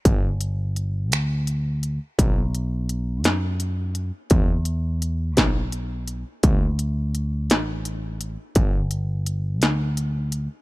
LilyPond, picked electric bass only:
\new Staff \with { instrumentName = "Picked electric bass" } { \clef bass \time 6/8 \key g \lydian \tempo 4. = 56 g,,4. d,4. | b,,4. fis,4. | e,4. b,,4. | d,4. a,,4. |
g,,4. d,4. | }